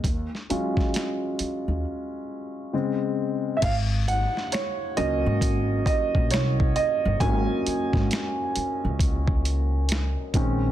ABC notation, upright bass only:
X:1
M:4/4
L:1/16
Q:"Swing 16ths" 1/4=67
K:Abmix
V:1 name="Upright bass" clef=bass
E,, z2 E, z3 E,, z8 | A,,,3 z3 D,, A,, A,,,2 z B,,, C,,2 z =G,,, | A,,, z2 A,, z3 D,,6 z B,,,2 |]